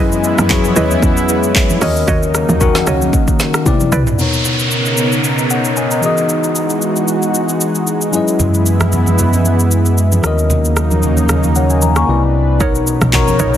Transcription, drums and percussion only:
0.12 shaker
0.24 shaker
0.38 cross-stick, high conga, shaker
0.50 kick, clap, low conga, shaker
0.64 high conga, shaker
0.76 low conga, shaker
0.91 high conga, shaker
1.03 kick, shaker
1.17 shaker
1.29 shaker
1.43 shaker
1.55 kick, clap, shaker
1.70 high conga, shaker
1.82 cross-stick, open hi-hat, shaker
1.96 shaker
2.08 kick, low conga, shaker
2.23 shaker
2.35 cross-stick, shaker
2.49 high conga, shaker
2.61 kick, low conga, shaker
2.75 snare, high conga, shaker
2.87 cross-stick, low conga, shaker
3.02 high conga, shaker
3.13 kick, shaker
3.28 kick, shaker
3.40 snare, shaker
3.54 cross-stick, shaker
3.66 kick, high tom, shaker
3.80 high conga, shaker
3.92 mid tom, shaker
4.07 floor tom, shaker
4.19 shaker
4.33 shaker
4.45 shaker
4.59 shaker
4.71 shaker
4.86 shaker
4.97 shaker
5.12 shaker
5.24 shaker
5.38 shaker
5.50 shaker
5.65 shaker
5.77 shaker
5.91 shaker
6.03 shaker
6.17 shaker
6.29 shaker
6.44 shaker
6.55 shaker
6.70 shaker
6.82 shaker
6.96 shaker
7.08 shaker
7.22 shaker
7.34 shaker
7.49 shaker
7.61 shaker
7.75 shaker
7.87 shaker
8.01 shaker
8.13 shaker
8.28 shaker
8.39 low conga, shaker
8.54 shaker
8.66 shaker
8.80 cross-stick, high conga, shaker
8.92 low conga, shaker
9.06 high conga, shaker
9.19 low conga, shaker
9.33 high conga, shaker
9.45 shaker
9.59 shaker
9.71 shaker
9.86 shaker
9.98 shaker
10.12 high conga, shaker
10.24 cross-stick, shaker
10.39 shaker
10.50 low conga, shaker
10.65 shaker
10.77 cross-stick, shaker
10.91 high conga, shaker
11.03 low conga, shaker
11.17 high conga, shaker
11.29 cross-stick, low conga, shaker
11.43 high conga, shaker
11.55 shaker
11.70 shaker
11.82 high conga, shaker
11.96 cross-stick, shaker
12.61 kick, low conga, shaker
12.75 shaker
12.87 shaker
13.01 cross-stick, high conga, shaker
13.13 kick, clap, low conga, shaker
13.27 high conga, shaker
13.39 low conga, shaker
13.54 shaker

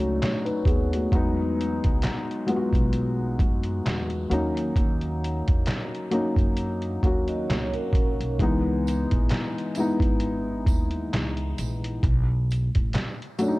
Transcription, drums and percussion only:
0.00 closed hi-hat
0.22 snare, clap, closed hi-hat
0.46 closed hi-hat
0.65 kick, closed hi-hat
0.93 closed hi-hat
1.12 kick, closed hi-hat
1.61 closed hi-hat
1.84 kick, closed hi-hat
2.02 snare, clap, closed hi-hat
2.31 closed hi-hat
2.48 closed hi-hat
2.73 kick, closed hi-hat
2.93 closed hi-hat
3.39 kick, closed hi-hat
3.63 closed hi-hat
3.86 snare, clap, closed hi-hat
4.10 closed hi-hat
4.31 closed hi-hat
4.57 closed hi-hat
4.76 kick, closed hi-hat
5.01 closed hi-hat
5.24 closed hi-hat
5.48 kick, closed hi-hat
5.66 snare, clap, closed hi-hat
5.95 closed hi-hat
6.11 closed hi-hat
6.36 kick, closed hi-hat
6.57 closed hi-hat
6.82 closed hi-hat
7.03 kick, closed hi-hat
7.28 closed hi-hat
7.50 snare, clap, closed hi-hat
7.74 closed hi-hat
7.93 kick, closed hi-hat
8.21 closed hi-hat
8.39 kick, closed hi-hat
8.87 closed hi-hat, tambourine
9.11 kick, closed hi-hat
9.29 snare, clap, closed hi-hat
9.58 closed hi-hat
9.75 closed hi-hat, tambourine
10.00 kick, closed hi-hat
10.20 closed hi-hat
10.66 kick, closed hi-hat, tambourine
10.91 closed hi-hat
11.13 snare, clap, closed hi-hat
11.37 closed hi-hat
11.58 closed hi-hat, tambourine
11.84 closed hi-hat
12.03 kick, closed hi-hat
12.50 closed hi-hat, tambourine
12.75 kick, closed hi-hat
12.93 snare, clap, closed hi-hat
13.22 closed hi-hat
13.38 closed hi-hat, tambourine

